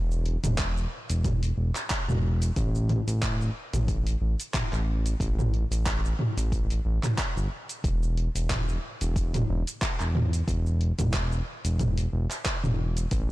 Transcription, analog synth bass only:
0, 0, Header, 1, 2, 480
1, 0, Start_track
1, 0, Tempo, 659341
1, 1868, Time_signature, 4, 2, 24, 8
1, 9695, End_track
2, 0, Start_track
2, 0, Title_t, "Analog synth bass"
2, 0, Program_c, 0, 38
2, 0, Note_on_c, 0, 28, 105
2, 271, Note_off_c, 0, 28, 0
2, 318, Note_on_c, 0, 28, 86
2, 627, Note_off_c, 0, 28, 0
2, 798, Note_on_c, 0, 28, 96
2, 1107, Note_off_c, 0, 28, 0
2, 1147, Note_on_c, 0, 28, 81
2, 1249, Note_off_c, 0, 28, 0
2, 1517, Note_on_c, 0, 28, 91
2, 1827, Note_off_c, 0, 28, 0
2, 1867, Note_on_c, 0, 33, 96
2, 2191, Note_off_c, 0, 33, 0
2, 2238, Note_on_c, 0, 33, 84
2, 2547, Note_off_c, 0, 33, 0
2, 2718, Note_on_c, 0, 33, 90
2, 3027, Note_off_c, 0, 33, 0
2, 3066, Note_on_c, 0, 33, 86
2, 3168, Note_off_c, 0, 33, 0
2, 3438, Note_on_c, 0, 33, 94
2, 3747, Note_off_c, 0, 33, 0
2, 3785, Note_on_c, 0, 33, 101
2, 4110, Note_off_c, 0, 33, 0
2, 4157, Note_on_c, 0, 33, 83
2, 4466, Note_off_c, 0, 33, 0
2, 4638, Note_on_c, 0, 33, 90
2, 4947, Note_off_c, 0, 33, 0
2, 4987, Note_on_c, 0, 33, 88
2, 5089, Note_off_c, 0, 33, 0
2, 5359, Note_on_c, 0, 31, 100
2, 5443, Note_off_c, 0, 31, 0
2, 5708, Note_on_c, 0, 28, 102
2, 6031, Note_off_c, 0, 28, 0
2, 6081, Note_on_c, 0, 28, 86
2, 6388, Note_off_c, 0, 28, 0
2, 6562, Note_on_c, 0, 28, 89
2, 6869, Note_off_c, 0, 28, 0
2, 6911, Note_on_c, 0, 28, 93
2, 7011, Note_off_c, 0, 28, 0
2, 7283, Note_on_c, 0, 28, 90
2, 7589, Note_off_c, 0, 28, 0
2, 7627, Note_on_c, 0, 28, 106
2, 7951, Note_off_c, 0, 28, 0
2, 8001, Note_on_c, 0, 28, 92
2, 8308, Note_off_c, 0, 28, 0
2, 8478, Note_on_c, 0, 28, 89
2, 8787, Note_off_c, 0, 28, 0
2, 8830, Note_on_c, 0, 28, 84
2, 8930, Note_off_c, 0, 28, 0
2, 9199, Note_on_c, 0, 28, 87
2, 9507, Note_off_c, 0, 28, 0
2, 9547, Note_on_c, 0, 33, 104
2, 9695, Note_off_c, 0, 33, 0
2, 9695, End_track
0, 0, End_of_file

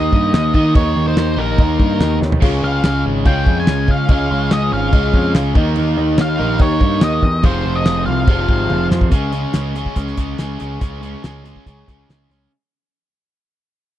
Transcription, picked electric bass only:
0, 0, Header, 1, 2, 480
1, 0, Start_track
1, 0, Tempo, 418118
1, 868, Time_signature, 4, 2, 24, 8
1, 9991, Tempo, 424628
1, 15961, End_track
2, 0, Start_track
2, 0, Title_t, "Picked electric bass"
2, 0, Program_c, 0, 34
2, 0, Note_on_c, 0, 39, 95
2, 120, Note_off_c, 0, 39, 0
2, 144, Note_on_c, 0, 43, 94
2, 360, Note_off_c, 0, 43, 0
2, 384, Note_on_c, 0, 39, 96
2, 600, Note_off_c, 0, 39, 0
2, 625, Note_on_c, 0, 51, 98
2, 840, Note_off_c, 0, 51, 0
2, 864, Note_on_c, 0, 39, 93
2, 1079, Note_off_c, 0, 39, 0
2, 1103, Note_on_c, 0, 39, 89
2, 1318, Note_off_c, 0, 39, 0
2, 1338, Note_on_c, 0, 39, 93
2, 1555, Note_off_c, 0, 39, 0
2, 1574, Note_on_c, 0, 34, 88
2, 1793, Note_off_c, 0, 34, 0
2, 1817, Note_on_c, 0, 39, 93
2, 2034, Note_off_c, 0, 39, 0
2, 2060, Note_on_c, 0, 43, 88
2, 2276, Note_off_c, 0, 43, 0
2, 2297, Note_on_c, 0, 39, 93
2, 2514, Note_off_c, 0, 39, 0
2, 2544, Note_on_c, 0, 39, 90
2, 2758, Note_off_c, 0, 39, 0
2, 2779, Note_on_c, 0, 37, 91
2, 2995, Note_off_c, 0, 37, 0
2, 3018, Note_on_c, 0, 37, 80
2, 3234, Note_off_c, 0, 37, 0
2, 3268, Note_on_c, 0, 37, 87
2, 3479, Note_off_c, 0, 37, 0
2, 3511, Note_on_c, 0, 32, 85
2, 3721, Note_off_c, 0, 32, 0
2, 3742, Note_on_c, 0, 37, 94
2, 3956, Note_off_c, 0, 37, 0
2, 3978, Note_on_c, 0, 41, 90
2, 4194, Note_off_c, 0, 41, 0
2, 4225, Note_on_c, 0, 37, 89
2, 4437, Note_off_c, 0, 37, 0
2, 4456, Note_on_c, 0, 49, 93
2, 4672, Note_off_c, 0, 49, 0
2, 4696, Note_on_c, 0, 37, 91
2, 4913, Note_off_c, 0, 37, 0
2, 4944, Note_on_c, 0, 37, 94
2, 5157, Note_off_c, 0, 37, 0
2, 5179, Note_on_c, 0, 37, 96
2, 5394, Note_off_c, 0, 37, 0
2, 5422, Note_on_c, 0, 32, 90
2, 5636, Note_off_c, 0, 32, 0
2, 5659, Note_on_c, 0, 37, 90
2, 5874, Note_off_c, 0, 37, 0
2, 5896, Note_on_c, 0, 41, 92
2, 6112, Note_off_c, 0, 41, 0
2, 6147, Note_on_c, 0, 37, 91
2, 6359, Note_off_c, 0, 37, 0
2, 6377, Note_on_c, 0, 39, 97
2, 6593, Note_off_c, 0, 39, 0
2, 6629, Note_on_c, 0, 39, 91
2, 6840, Note_off_c, 0, 39, 0
2, 6862, Note_on_c, 0, 39, 91
2, 7076, Note_off_c, 0, 39, 0
2, 7102, Note_on_c, 0, 39, 98
2, 7316, Note_off_c, 0, 39, 0
2, 7344, Note_on_c, 0, 34, 96
2, 7558, Note_off_c, 0, 34, 0
2, 7575, Note_on_c, 0, 39, 101
2, 7793, Note_off_c, 0, 39, 0
2, 7811, Note_on_c, 0, 43, 97
2, 8031, Note_off_c, 0, 43, 0
2, 8064, Note_on_c, 0, 39, 93
2, 8278, Note_off_c, 0, 39, 0
2, 8294, Note_on_c, 0, 40, 101
2, 8536, Note_on_c, 0, 29, 92
2, 8554, Note_off_c, 0, 40, 0
2, 8755, Note_off_c, 0, 29, 0
2, 8790, Note_on_c, 0, 29, 89
2, 9002, Note_off_c, 0, 29, 0
2, 9028, Note_on_c, 0, 29, 98
2, 9242, Note_off_c, 0, 29, 0
2, 9268, Note_on_c, 0, 36, 92
2, 9482, Note_off_c, 0, 36, 0
2, 9499, Note_on_c, 0, 29, 99
2, 9718, Note_off_c, 0, 29, 0
2, 9742, Note_on_c, 0, 32, 89
2, 9960, Note_off_c, 0, 32, 0
2, 9987, Note_on_c, 0, 29, 92
2, 10201, Note_off_c, 0, 29, 0
2, 10233, Note_on_c, 0, 41, 94
2, 10458, Note_off_c, 0, 41, 0
2, 10458, Note_on_c, 0, 37, 84
2, 10828, Note_off_c, 0, 37, 0
2, 10947, Note_on_c, 0, 37, 79
2, 11313, Note_off_c, 0, 37, 0
2, 11414, Note_on_c, 0, 37, 86
2, 11600, Note_off_c, 0, 37, 0
2, 11658, Note_on_c, 0, 37, 83
2, 11843, Note_off_c, 0, 37, 0
2, 11910, Note_on_c, 0, 37, 74
2, 12090, Note_off_c, 0, 37, 0
2, 12148, Note_on_c, 0, 37, 78
2, 12329, Note_off_c, 0, 37, 0
2, 12377, Note_on_c, 0, 37, 83
2, 12747, Note_off_c, 0, 37, 0
2, 12866, Note_on_c, 0, 37, 78
2, 13233, Note_off_c, 0, 37, 0
2, 13336, Note_on_c, 0, 37, 73
2, 13522, Note_off_c, 0, 37, 0
2, 13585, Note_on_c, 0, 37, 73
2, 13768, Note_off_c, 0, 37, 0
2, 13822, Note_on_c, 0, 37, 65
2, 14007, Note_off_c, 0, 37, 0
2, 14053, Note_on_c, 0, 37, 73
2, 14241, Note_off_c, 0, 37, 0
2, 15961, End_track
0, 0, End_of_file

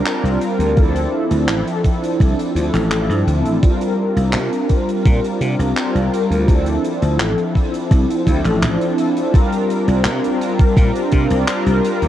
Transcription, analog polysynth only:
0, 0, Header, 1, 2, 480
1, 0, Start_track
1, 0, Tempo, 714286
1, 517, Time_signature, 4, 2, 24, 8
1, 8118, End_track
2, 0, Start_track
2, 0, Title_t, "Analog polysynth"
2, 0, Program_c, 0, 90
2, 0, Control_c, 0, 64, 127
2, 30, Note_on_c, 0, 55, 90
2, 32, Note_on_c, 0, 60, 84
2, 35, Note_on_c, 0, 62, 83
2, 39, Note_on_c, 0, 65, 82
2, 40, Note_on_c, 0, 70, 102
2, 486, Note_off_c, 0, 55, 0
2, 486, Note_off_c, 0, 60, 0
2, 488, Note_off_c, 0, 62, 0
2, 490, Note_off_c, 0, 65, 0
2, 490, Note_off_c, 0, 70, 0
2, 510, Note_on_c, 0, 53, 87
2, 514, Note_on_c, 0, 60, 78
2, 519, Note_on_c, 0, 62, 79
2, 525, Note_on_c, 0, 64, 80
2, 526, Control_c, 0, 64, 0
2, 529, Note_on_c, 0, 69, 97
2, 637, Control_c, 0, 64, 127
2, 1926, Note_off_c, 0, 53, 0
2, 1927, Note_off_c, 0, 60, 0
2, 1930, Note_off_c, 0, 62, 0
2, 1933, Note_off_c, 0, 64, 0
2, 1935, Note_off_c, 0, 69, 0
2, 1952, Note_on_c, 0, 53, 90
2, 1953, Note_on_c, 0, 60, 84
2, 1957, Note_on_c, 0, 62, 85
2, 1960, Note_on_c, 0, 64, 84
2, 1961, Note_on_c, 0, 69, 102
2, 2406, Note_off_c, 0, 53, 0
2, 2407, Note_off_c, 0, 60, 0
2, 2409, Note_off_c, 0, 62, 0
2, 2410, Note_off_c, 0, 64, 0
2, 2411, Note_off_c, 0, 69, 0
2, 2425, Note_on_c, 0, 55, 86
2, 2430, Note_on_c, 0, 60, 80
2, 2436, Note_on_c, 0, 62, 80
2, 2439, Note_on_c, 0, 65, 79
2, 2445, Control_c, 0, 64, 0
2, 2447, Note_on_c, 0, 70, 96
2, 2570, Control_c, 0, 64, 127
2, 3843, Note_off_c, 0, 55, 0
2, 3846, Note_off_c, 0, 60, 0
2, 3848, Note_off_c, 0, 62, 0
2, 3850, Note_off_c, 0, 65, 0
2, 3854, Note_off_c, 0, 70, 0
2, 3868, Note_on_c, 0, 55, 92
2, 3872, Note_on_c, 0, 60, 85
2, 3873, Note_on_c, 0, 62, 86
2, 3876, Note_on_c, 0, 65, 87
2, 3878, Note_on_c, 0, 70, 102
2, 4324, Note_off_c, 0, 55, 0
2, 4326, Note_off_c, 0, 60, 0
2, 4327, Note_off_c, 0, 62, 0
2, 4328, Note_off_c, 0, 65, 0
2, 4329, Note_off_c, 0, 70, 0
2, 4343, Note_on_c, 0, 53, 86
2, 4348, Note_on_c, 0, 60, 78
2, 4352, Note_on_c, 0, 62, 78
2, 4358, Note_on_c, 0, 64, 80
2, 4365, Note_on_c, 0, 69, 93
2, 4367, Control_c, 0, 64, 0
2, 4502, Control_c, 0, 64, 127
2, 5527, Note_off_c, 0, 53, 0
2, 5529, Note_off_c, 0, 60, 0
2, 5531, Note_off_c, 0, 62, 0
2, 5534, Note_off_c, 0, 64, 0
2, 5538, Note_off_c, 0, 69, 0
2, 5543, Note_on_c, 0, 53, 102
2, 5548, Note_on_c, 0, 60, 94
2, 5553, Note_on_c, 0, 62, 88
2, 5558, Note_on_c, 0, 64, 94
2, 5564, Note_on_c, 0, 69, 114
2, 6242, Note_off_c, 0, 53, 0
2, 6244, Note_off_c, 0, 60, 0
2, 6247, Note_off_c, 0, 62, 0
2, 6250, Note_off_c, 0, 64, 0
2, 6253, Note_off_c, 0, 69, 0
2, 6260, Note_on_c, 0, 55, 85
2, 6265, Note_on_c, 0, 60, 79
2, 6270, Note_on_c, 0, 62, 80
2, 6277, Note_on_c, 0, 65, 78
2, 6280, Note_on_c, 0, 70, 95
2, 6286, Control_c, 0, 64, 0
2, 6406, Control_c, 0, 64, 127
2, 7680, Note_off_c, 0, 55, 0
2, 7683, Note_off_c, 0, 60, 0
2, 7686, Note_off_c, 0, 62, 0
2, 7689, Note_off_c, 0, 65, 0
2, 7690, Note_off_c, 0, 70, 0
2, 7708, Note_on_c, 0, 55, 91
2, 7714, Note_on_c, 0, 60, 84
2, 7716, Note_on_c, 0, 62, 83
2, 7716, Note_on_c, 0, 65, 85
2, 7718, Note_on_c, 0, 70, 100
2, 8118, Note_off_c, 0, 55, 0
2, 8118, Note_off_c, 0, 60, 0
2, 8118, Note_off_c, 0, 62, 0
2, 8118, Note_off_c, 0, 65, 0
2, 8118, Note_off_c, 0, 70, 0
2, 8118, End_track
0, 0, End_of_file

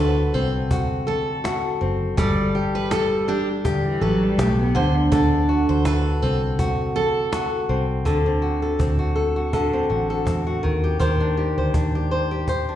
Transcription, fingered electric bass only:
0, 0, Header, 1, 2, 480
1, 0, Start_track
1, 0, Tempo, 736196
1, 1418, Time_signature, 4, 2, 24, 8
1, 8316, End_track
2, 0, Start_track
2, 0, Title_t, "Fingered electric bass"
2, 0, Program_c, 0, 33
2, 0, Note_on_c, 0, 38, 86
2, 193, Note_off_c, 0, 38, 0
2, 223, Note_on_c, 0, 36, 81
2, 1155, Note_off_c, 0, 36, 0
2, 1182, Note_on_c, 0, 30, 78
2, 1401, Note_off_c, 0, 30, 0
2, 1422, Note_on_c, 0, 31, 88
2, 2486, Note_off_c, 0, 31, 0
2, 2617, Note_on_c, 0, 33, 84
2, 2838, Note_off_c, 0, 33, 0
2, 2857, Note_on_c, 0, 35, 87
2, 3078, Note_off_c, 0, 35, 0
2, 3101, Note_on_c, 0, 38, 95
2, 3320, Note_off_c, 0, 38, 0
2, 3339, Note_on_c, 0, 38, 101
2, 3684, Note_off_c, 0, 38, 0
2, 3711, Note_on_c, 0, 38, 89
2, 4032, Note_off_c, 0, 38, 0
2, 4059, Note_on_c, 0, 36, 79
2, 4991, Note_off_c, 0, 36, 0
2, 5016, Note_on_c, 0, 36, 89
2, 5237, Note_off_c, 0, 36, 0
2, 5253, Note_on_c, 0, 38, 76
2, 5708, Note_off_c, 0, 38, 0
2, 5736, Note_on_c, 0, 38, 73
2, 6430, Note_off_c, 0, 38, 0
2, 6457, Note_on_c, 0, 33, 72
2, 6677, Note_off_c, 0, 33, 0
2, 6692, Note_on_c, 0, 40, 74
2, 6914, Note_off_c, 0, 40, 0
2, 6942, Note_on_c, 0, 39, 81
2, 7160, Note_off_c, 0, 39, 0
2, 7173, Note_on_c, 0, 39, 81
2, 7520, Note_off_c, 0, 39, 0
2, 7547, Note_on_c, 0, 38, 71
2, 7646, Note_off_c, 0, 38, 0
2, 7656, Note_on_c, 0, 39, 71
2, 8316, Note_off_c, 0, 39, 0
2, 8316, End_track
0, 0, End_of_file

